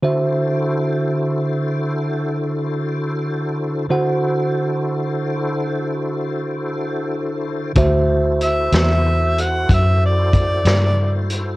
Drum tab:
HH |------------|------------|x-xx-xx-xx-x|
SD |------------|------------|---o-----o--|
BD |------------|------------|o-----o-o---|